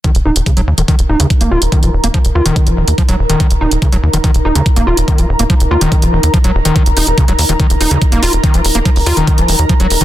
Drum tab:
HH |xx-xxx-xxx-xxx-x|xx-xxx-xxx-xxx-x|xx-xxx-xxx-xxx-x|xx-xxx-xxx-xxx-x|
BD |o---o---o---o---|o---o---o---o---|o---o---o---o---|o---o---o---o---|

HH |xxoxxxoxxxoxxxox|xxoxxooxxxoxxxox|
BD |o---o---o---o---|o---o---o---o---|